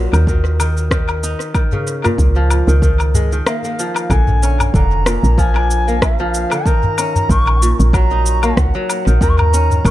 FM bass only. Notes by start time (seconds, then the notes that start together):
0.13 D#2
2.18 C#2
2.67 C#2
4.10 A#1
4.74 F1
5.23 A#1
7.29 A#1
7.80 A#1
8.57 C#2
9.07 A#1
9.21 D#2
9.85 A#1